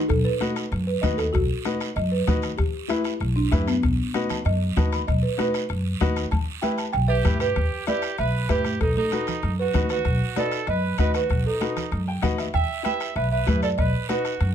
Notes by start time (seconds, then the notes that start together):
0.09 B1 A4, bombo low, bombo rim, high conga, long guiro
0.25 B4
0.40 D#4 F#4 B4, bombo rim, high conga, short guiro
0.56 bombo rim, short guiro
0.71 F#2, bombo rim, high conga, long guiro
0.87 B4
1.02 D#2 D#4 F#4 B4 D#5, bombo low, bombo rim, high conga, short guiro
1.17 A4, bombo rim, short guiro
1.33 B1 F#4, bombo low, bombo rim, high conga, long guiro
1.65 D#4 F#4 B4, bombo rim, high conga, short guiro
1.80 bombo rim, short guiro
1.96 F#2 D#5, bombo rim, high conga, long guiro
2.12 B4
2.27 D#2 D#4 F#4 B4, bombo low, bombo rim, high conga, low conga, short guiro
2.42 bombo rim, short guiro
2.58 E2 G4, bombo low, bombo rim, high conga, long guiro
2.88 E4 G4 B4, bombo rim, high conga, short guiro
3.04 bombo rim, short guiro
3.20 B1, bombo rim, high conga, long guiro
3.36 D4
3.51 F#2 E4 G4 B4, bombo low, bombo rim, high conga, short guiro
3.68 B3, bombo rim, short guiro
3.83 B1, bombo low, bombo rim, long guiro
4.14 D#4 F#4 B4, bombo rim, high conga, short guiro
4.30 A5, bombo rim, low conga, short guiro
4.45 F#2 D#5, bombo rim, high conga, long guiro
4.76 D#2 D#4 F#4 B4 A5, bombo low, bombo rim, high conga, low conga, short guiro
4.92 B5, bombo rim, short guiro
5.07 B1 D#5, bombo low, bombo rim, high conga, long guiro
5.23 B4
5.38 D#4 F#4 B4, bombo rim, high conga, short guiro
5.54 bombo rim, short guiro
5.69 F#2, bombo rim, long guiro
6.00 D#2 D#4 F#4 B4, bombo low, bombo rim, high conga, short guiro
6.16 bombo rim, short guiro
6.31 E2 A5, bombo low, bombo rim, high conga, long guiro
6.62 E4 G4 B4 G5, bombo rim, high conga, short guiro
6.78 A5, bombo rim, short guiro
6.93 B1 G5, bombo rim, high conga, long guiro
7.08 G4 B4 E5
7.24 G2 E4 G4 B4, bombo low, bombo rim, high conga, low conga, short guiro
7.40 G4 B4, bombo rim, short guiro
7.56 E2, bombo low, bombo rim, high conga, long guiro
7.87 E4 G4 B4 D5, bombo rim, high conga, short guiro
8.02 bombo rim, short guiro
8.18 B1 B4 E5, bombo rim, high conga, long guiro
8.49 G2 E4 G4 B4, bombo low, bombo rim, high conga, short guiro
8.65 bombo rim, high conga, short guiro
8.81 B1 D#4 A4, bombo low, bombo rim, long guiro
8.97 D#4 A4, high conga
9.12 D#4 F#4 B4, bombo rim, high conga, short guiro
9.27 bombo rim, low conga, short guiro
9.42 F#2, bombo rim, high conga, long guiro
9.59 F#4 B4
9.73 D#2 D#4 F#4 B4, bombo low, bombo rim, high conga, low conga, short guiro
9.89 F#4 B4, bombo rim, short guiro
10.05 B1, bombo low, bombo rim, high conga, long guiro
10.36 D#4 F#4 A4 B4 D5, bombo rim, high conga, short guiro
10.51 bombo rim, short guiro
10.67 F#2 B4 D#5, bombo rim, high conga, long guiro
10.98 D#2 D#4 F#4 B4 D#5, bombo low, bombo rim, high conga, short guiro
11.14 F#4 B4, bombo rim, short guiro
11.30 B1, bombo low, bombo rim, high conga, long guiro
11.46 D#4 A4
11.61 D#4 F#4 B4, bombo rim, high conga, short guiro
11.77 bombo rim, low conga, short guiro
11.92 F#2, bombo rim, high conga, long guiro
12.08 G5
12.22 D#2 D#4 F#4 B4 F#5, bombo low, bombo rim, high conga, low conga, short guiro
12.38 E5, bombo rim, short guiro
12.54 E2 E5 G5, bombo low, bombo rim, high conga, long guiro
12.83 E4 G4 B4 E5 G5, bombo rim, high conga, short guiro
13.00 bombo rim, short guiro
13.16 B1 B4 E5, bombo rim, high conga, long guiro
13.31 B4 E5
13.46 F#2 E4 G4 B4, bombo low, bombo rim, high conga, short guiro
13.62 A4 D5, bombo rim, short guiro
13.78 B1 B4 D#5, bombo low, bombo rim, high conga, long guiro
14.09 D#4 F#4 B4, bombo rim, high conga, short guiro
14.25 bombo rim, short guiro
14.40 F#2, bombo rim, high conga, long guiro